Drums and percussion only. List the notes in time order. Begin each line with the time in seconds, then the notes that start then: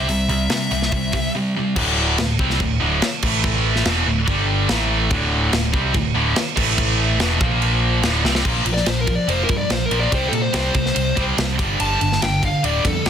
0.09 open hi-hat
0.29 open hi-hat
0.50 snare, open hi-hat
0.71 open hi-hat
0.82 snare
0.92 kick, open hi-hat
1.13 kick, open hi-hat
1.76 kick, crash
2.18 snare, crash
2.39 kick
2.50 snare
2.60 kick, crash
3.02 snare, crash
3.22 kick, crash
3.44 kick, crash
3.76 snare
3.85 snare, crash
4.28 kick, crash
4.69 snare, crash
5.11 kick, crash
5.53 snare, crash
5.74 kick
5.94 kick, crash
6.36 snare, crash
6.57 kick, crash
6.78 kick, crash
7.20 snare, crash
7.41 kick
7.62 crash
8.03 snare, crash
8.25 snare
8.35 snare
8.45 kick, crash
8.66 ride
8.77 snare
8.86 snare, ride
9.07 kick, ride
9.29 ride
9.49 kick, ride
9.70 snare, ride
9.91 ride
10.12 kick, ride
10.33 ride
10.54 snare, ride
10.74 kick, ride
10.86 snare
10.96 ride
11.17 kick, ride
11.38 snare, ride
11.59 kick, ride
11.80 ride
12.01 ride
12.12 snare
12.22 snare, ride
12.43 kick, ride
12.64 ride
12.85 kick, ride
13.06 snare, ride